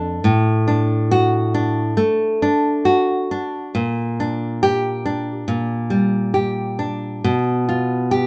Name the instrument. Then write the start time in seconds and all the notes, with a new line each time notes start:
nylon-string guitar
Already playing: F2 A3 D4 A4
0.24 A2
0.68 D4
1.11 F#4
1.54 D4
1.97 A3
2.42 D4
2.85 F#4
3.31 D4
3.75 A#2
4.20 D4
4.63 G4
5.06 D4
5.48 A#2
5.90 G3
6.34 G4
6.79 D4
7.24 B2
7.69 F4
8.11 G4